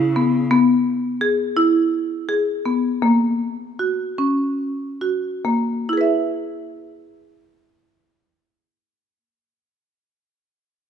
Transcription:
Already playing: C#3
0.16 B3
0.51 B3
1.21 G#4
1.57 E4
2.29 G#4
2.65 B3
3.02 A#3
3.79 F#4
4.18 C#4
5.01 F#4
5.45 A#3
5.89 E4 G#4
5.97 B4 E5

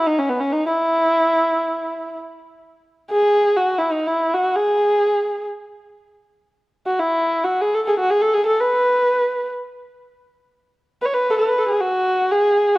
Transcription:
0.07 D#4
0.19 C#4
0.29 B3
0.40 C#4
0.53 D#4
0.67 E4
3.11 G#4
3.57 F#4
3.78 E4
3.92 D#4
4.07 E4
4.34 F#4
4.56 G#4
6.86 F#4
6.99 E4
7.44 F#4
7.61 G#4
7.74 A4
7.84 G#4 A4
7.99 F#4
8.10 G#4
8.21 A4
8.34 G#4
8.46 A4
8.61 B4
11.01 B4 C#5
11.14 B4
11.30 A4 B4
11.38 A4
11.46 B4
11.59 A4
11.69 G#4
11.81 F#4
12.32 G#4

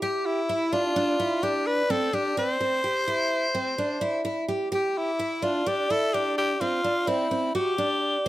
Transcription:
0.02 G4
0.26 E4
0.49 E4
0.73 D4 F4
0.96 D4
1.20 E4
1.43 D4 G4
1.67 B4
1.90 C4 A4
2.13 D4 G4
2.37 C4 C5
2.61 C4
2.84 G4
3.08 E4
3.55 C4
3.78 D4
4.01 E4
4.25 E4
4.48 G4
4.72 G4
4.97 E4
5.19 E4
5.42 D4 F4
5.66 D4 G4
5.90 E4 A4
6.14 D4 G4
6.38 G4
6.60 C4 F4
6.84 D4
7.07 C4 E4
7.31 C4
7.55 F#4 G4
7.78 D4

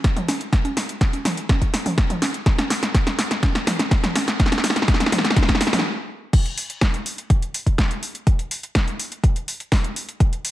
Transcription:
0.04 kick, snare, closed hi-hat
0.16 closed hi-hat, mid tom
0.28 snare, open hi-hat, high conga
0.41 closed hi-hat
0.53 kick, snare, closed hi-hat
0.65 closed hi-hat, high conga
0.77 snare, open hi-hat
0.89 closed hi-hat
1.01 kick, snare, closed hi-hat
1.13 closed hi-hat, high conga
1.25 snare, open hi-hat, mid tom
1.37 closed hi-hat
1.49 kick, snare, closed hi-hat, high conga
1.62 kick, closed hi-hat
1.74 snare, open hi-hat
1.86 open hi-hat, mid tom, high conga
1.98 kick, snare, closed hi-hat
2.10 closed hi-hat, mid tom
2.22 snare, open hi-hat, high conga
2.34 closed hi-hat
2.46 kick, snare, closed hi-hat
2.58 snare, closed hi-hat, high conga
2.70 snare, open hi-hat
2.83 snare, closed hi-hat
2.94 kick, snare, closed hi-hat
3.07 snare, closed hi-hat, high conga
3.19 snare, open hi-hat
3.31 snare, closed hi-hat
3.43 kick, snare, closed hi-hat, high conga
3.55 snare, closed hi-hat
3.67 snare, open hi-hat, mid tom
3.79 snare, closed hi-hat, high conga
3.91 kick, snare, closed hi-hat
4.04 snare, closed hi-hat, mid tom
4.16 snare, open hi-hat, high conga
4.28 snare, closed hi-hat
4.40 kick, snare, closed hi-hat
4.46 snare
4.52 snare, closed hi-hat, high conga
4.58 snare
4.64 snare, open hi-hat
4.70 snare
4.76 snare, closed hi-hat
4.82 snare
4.88 kick, snare, closed hi-hat
4.94 snare
5.00 snare, closed hi-hat, high conga
5.06 snare
5.12 snare, open hi-hat, mid tom
5.18 snare
5.25 snare, closed hi-hat
5.30 snare
5.36 kick, snare, closed hi-hat, high conga
5.43 snare
5.49 kick, snare, closed hi-hat
5.55 snare
5.61 snare, open hi-hat
5.67 snare
5.73 snare, open hi-hat, mid tom, high conga
5.79 snare
6.33 kick, closed hi-hat, crash
6.46 closed hi-hat
6.58 open hi-hat
6.70 closed hi-hat
6.81 kick, snare, closed hi-hat
6.94 closed hi-hat
7.06 open hi-hat
7.18 closed hi-hat
7.30 kick, closed hi-hat
7.42 closed hi-hat
7.54 open hi-hat
7.66 kick, closed hi-hat
7.78 kick, snare, closed hi-hat
7.91 closed hi-hat
8.03 open hi-hat
8.15 closed hi-hat
8.27 kick, closed hi-hat
8.39 closed hi-hat
8.51 open hi-hat
8.63 closed hi-hat
8.75 kick, snare, closed hi-hat
8.88 closed hi-hat
8.99 open hi-hat
9.12 closed hi-hat
9.24 kick, closed hi-hat
9.36 closed hi-hat
9.48 open hi-hat
9.60 closed hi-hat
9.72 kick, snare, open hi-hat
9.84 closed hi-hat
9.96 open hi-hat
10.09 closed hi-hat
10.20 kick, closed hi-hat
10.33 closed hi-hat
10.45 open hi-hat

